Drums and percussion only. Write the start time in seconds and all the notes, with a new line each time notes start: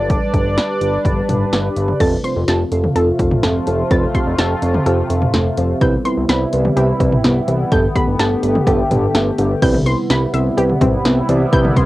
0.10 kick, closed hi-hat
0.34 kick, closed hi-hat
0.58 snare, closed hi-hat
0.81 closed hi-hat
1.05 kick, closed hi-hat
1.29 closed hi-hat, mid tom
1.53 snare, closed hi-hat
1.76 closed hi-hat
1.88 mid tom
2.00 kick, closed hi-hat, crash
2.24 closed hi-hat
2.48 snare, closed hi-hat
2.72 closed hi-hat
2.84 mid tom
2.96 closed hi-hat
3.19 kick, closed hi-hat
3.31 mid tom
3.43 snare, closed hi-hat
3.67 closed hi-hat
3.91 kick, closed hi-hat
4.15 kick, closed hi-hat
4.39 snare, closed hi-hat
4.62 closed hi-hat
4.74 mid tom
4.86 closed hi-hat
5.10 closed hi-hat
5.22 mid tom
5.34 snare, closed hi-hat
5.57 closed hi-hat
5.81 kick, closed hi-hat
6.05 closed hi-hat
6.29 snare, closed hi-hat
6.53 closed hi-hat
6.65 mid tom
6.77 closed hi-hat
7.00 kick, closed hi-hat
7.12 mid tom
7.24 snare, closed hi-hat
7.48 closed hi-hat
7.72 kick, closed hi-hat
7.96 kick, closed hi-hat
8.20 snare, closed hi-hat
8.43 closed hi-hat
8.55 mid tom
8.67 kick, closed hi-hat
8.91 closed hi-hat, mid tom
9.15 snare, closed hi-hat
9.38 closed hi-hat
9.62 kick, closed hi-hat, crash
9.74 mid tom
9.86 closed hi-hat
10.10 snare, closed hi-hat
10.34 closed hi-hat
10.58 closed hi-hat
10.70 mid tom
10.81 kick, closed hi-hat, mid tom
11.05 snare, closed hi-hat
11.29 closed hi-hat
11.53 kick, closed hi-hat
11.65 mid tom
11.77 kick, closed hi-hat